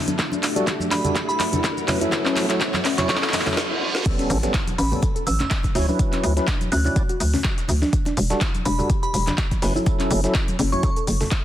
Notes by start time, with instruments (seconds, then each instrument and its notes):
Already playing: analog synth pad B3 E4 F#4 C#5 E5, ambient pad D4 A4 E5, riser
0.07 synth arpeggio sound D4, closed hi-hat, high conga, shaker
0.18 analog synth pad A3 F#4 G4 D5 E5, ambient pad E4, kick, clap, closed hi-hat, shaker
0.31 synth arpeggio sound D4, muted conga, shaker
0.38 ambient pad B4 F#5
0.43 clap, open hi-hat, shaker
0.56 tonewheel organ G3 D4 F#4 A4, closed hi-hat, muted conga, shaker
0.67 synth arpeggio sound E4, kick, clap, closed hi-hat, shaker
0.80 high conga, shaker
0.91 synth arpeggio sound D4, synth bell B5, clap, open hi-hat, muted conga, shaker
1.04 tonewheel organ G3 D4 F#4 A4, closed hi-hat, low conga, shaker
1.15 synth arpeggio sound G4, kick, clap, closed hi-hat, muted conga, shaker
1.29 synth arpeggio sound G4, synth bell B5, shaker
1.39 synth bell B5, clap, open hi-hat, high conga, shaker
1.52 synth arpeggio sound D4, closed hi-hat, muted conga, low conga, shaker
1.64 kick, clap, closed hi-hat, shaker
1.77 muted conga, shaker
1.88 tonewheel organ F#3 C#4 E4 B4, analog synth pad A3 F#4 C#5 E5, ambient pad F#4, clap, open hi-hat, low conga, shaker
2.01 tonewheel organ F#3 C#4 E4 A4, synth arpeggio sound E4, closed hi-hat, high conga, shaker
2.12 kick, clap, closed hi-hat, muted conga, shaker
2.17 ambient pad C#5
2.25 synth arpeggio sound C#4, clap, shaker
2.36 clap, open hi-hat, muted conga, shaker
2.49 tonewheel organ F#3 C#4 E4 A4, clap, closed hi-hat, shaker
2.61 synth arpeggio sound E4, kick, clap, closed hi-hat, shaker
2.74 clap, muted conga, high conga, shaker
2.85 synth arpeggio sound C#4, clap, open hi-hat, shaker
2.98 tonewheel organ F#3 C#4 E4 C#5, synth bell C#6, clap, closed hi-hat, muted conga, low conga, shaker
3.09 synth arpeggio sound A4, synth bell C#6, kick, clap, closed hi-hat, reverse cymbal, shaker
3.16 clap
3.22 synth arpeggio sound A4, clap, shaker
3.28 clap
3.33 clap, open hi-hat, muted conga, high conga, shaker
3.40 clap
3.46 tonewheel organ F#3 C#4 E4 A4, synth arpeggio sound A4, clap, open hi-hat, low conga, shaker
3.52 clap
3.57 synth arpeggio sound E5, snare
3.71 synth arpeggio sound E4
3.95 synth arpeggio sound F#4, snare
4.05 tonewheel organ G3 B3 C#4 A4, kick, closed hi-hat, crash, tambourine, impact, muted conga, shaker
4.19 synth arpeggio sound C#4, snare, closed hi-hat, shaker
4.30 fm bass A1, open hi-hat, tambourine, shaker
4.43 tonewheel organ G3 B3 C#4 A4, snare, closed hi-hat, muted conga, shaker
4.54 synth arpeggio sound E4, kick, snare, clap, closed hi-hat, tambourine, shaker
4.67 closed hi-hat, muted conga, high conga, shaker
4.78 fm bass A1, synth arpeggio sound C#4, synth bell B5, open hi-hat, tambourine, shaker
4.91 tonewheel organ G3 B3 C#4 A4, low conga, shaker
5.02 synth arpeggio sound A4, kick, closed hi-hat, tambourine, muted conga, shaker
5.16 synth arpeggio sound A4, closed hi-hat, shaker
5.26 fm bass A1, synth bell E6, open hi-hat, tambourine, muted conga, high conga, shaker
5.40 synth arpeggio sound C#4, synth bell E6, clap, closed hi-hat, low conga, shaker
5.51 kick, snare, clap, closed hi-hat, tambourine, shaker
5.63 kick, snare, closed hi-hat, muted conga, shaker
5.75 fm bass D2, tonewheel organ F#3 C#4 E4 C#5, snare, open hi-hat, low conga, shaker
5.88 tonewheel organ F#3 C#4 E4 B4, synth arpeggio sound D4, muted conga, high conga, shaker
5.99 kick, closed hi-hat, tambourine, shaker
6.12 synth arpeggio sound C#4, clap, closed hi-hat, shaker
6.23 fm bass D2, open hi-hat, tambourine, muted conga, shaker
6.36 tonewheel organ F#3 C#4 E4 B4, snare, closed hi-hat, shaker
6.47 synth arpeggio sound D4, kick, snare, clap, closed hi-hat, tambourine, shaker
6.61 closed hi-hat, high conga, shaker
6.72 fm bass D2, synth arpeggio sound C#4, synth bell F#6, open hi-hat, tambourine, shaker
6.84 tonewheel organ F#3 C#4 E4 D5, synth bell F#6, muted conga, low conga, shaker
6.96 synth arpeggio sound F#4, kick, closed hi-hat, tambourine, shaker
7.09 synth arpeggio sound F#4, closed hi-hat, muted conga, shaker
7.20 fm bass D2, open hi-hat, tambourine, high conga, shaker
7.34 synth arpeggio sound C#4, snare, open hi-hat, low conga, shaker
7.44 kick, snare, clap, closed hi-hat, tambourine, muted conga, shaker
7.58 snare, closed hi-hat, shaker
7.68 fm bass D2, open hi-hat, tambourine, muted conga, low conga, shaker
7.81 synth arpeggio sound D4, snare, high conga, shaker
7.93 kick, closed hi-hat, tambourine, shaker
8.05 synth arpeggio sound D4, snare, closed hi-hat, muted conga, shaker
8.17 fm bass E1, open hi-hat, tambourine, shaker
8.30 tonewheel organ G3 D4 F#4 A4, snare, closed hi-hat, muted conga, shaker
8.41 synth arpeggio sound E4, kick, snare, clap, closed hi-hat, tambourine, shaker
8.54 closed hi-hat, high conga, shaker
8.65 fm bass E1, synth arpeggio sound D4, synth bell B5, open hi-hat, tambourine, muted conga, shaker
8.78 tonewheel organ G3 D4 F#4 A4, low conga, shaker
8.89 synth arpeggio sound G4, kick, closed hi-hat, tambourine, muted conga, shaker
9.03 synth arpeggio sound G4, synth bell B5, closed hi-hat, shaker
9.13 fm bass E1, synth bell B5, open hi-hat, tambourine, high conga, shaker
9.27 synth arpeggio sound D4, clap, closed hi-hat, muted conga, low conga, shaker
9.38 kick, snare, clap, closed hi-hat, tambourine, shaker
9.51 kick, snare, closed hi-hat, muted conga, shaker
9.62 fm bass F#1, tonewheel organ F#3 C#4 E4 B4, snare, open hi-hat, low conga, shaker
9.75 tonewheel organ F#3 C#4 E4 A4, synth arpeggio sound E4, high conga, shaker
9.86 kick, closed hi-hat, tambourine, muted conga, shaker
9.99 synth arpeggio sound C#4, clap, closed hi-hat, shaker
10.10 fm bass F#1, open hi-hat, tambourine, muted conga, shaker
10.23 tonewheel organ F#3 C#4 E4 A4, snare, closed hi-hat, shaker
10.35 synth arpeggio sound E4, kick, snare, clap, closed hi-hat, tambourine, shaker
10.48 closed hi-hat, muted conga, high conga, shaker
10.59 fm bass F#1, synth arpeggio sound C#4, open hi-hat, tambourine, shaker
10.72 tonewheel organ F#3 C#4 E4 C#5, synth bell C#6, muted conga, low conga, shaker
10.83 synth arpeggio sound A4, synth bell C#6, kick, closed hi-hat, tambourine, shaker
10.96 synth arpeggio sound A4, closed hi-hat, shaker
11.07 fm bass F#1, open hi-hat, tambourine, muted conga, high conga, shaker
11.21 synth arpeggio sound A4, snare, open hi-hat, low conga, shaker
11.31 synth arpeggio sound E5, kick, snare, clap, closed hi-hat, tambourine, shaker